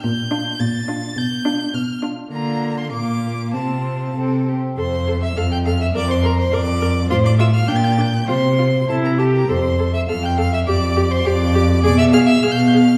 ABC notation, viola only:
X:1
M:2/4
L:1/8
Q:1/4=103
K:F
V:1 name="Viola"
z D z D | z D z D | B,2 B,2 | C2 C z |
A A A A | B B B B | F F D D | F F E G |
A A A A | G G G G | _A A A A |]